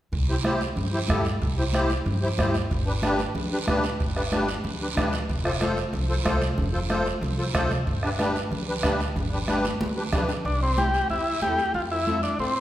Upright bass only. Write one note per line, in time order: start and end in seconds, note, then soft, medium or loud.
0.13 0.64 C2 medium
0.77 1.03 G2 medium
1.10 1.35 G2 medium
1.42 1.93 C2 loud
2.06 2.32 G2 medium
2.39 2.65 G2 medium
2.71 3.23 G1 loud
3.35 3.61 D2 medium
3.68 3.94 D2 medium
4.01 4.52 G1 medium
4.64 4.90 D2 medium
4.97 5.23 D2 medium
5.29 5.81 F1 medium
5.93 6.19 C2 medium
6.26 6.52 C2 medium
6.58 7.10 F1 medium
7.21 7.48 C2 medium
7.55 7.81 C2 medium
7.87 8.39 G1 medium
8.51 8.77 D2 medium
8.83 9.10 D2 medium
9.16 9.68 G1 loud
9.81 10.07 D2 medium
10.13 10.39 D2 medium
10.45 10.97 C2 loud
11.10 11.36 E2 medium
11.42 11.55 E2 medium
11.74 12.26 F2 loud
12.39 12.60 A2 medium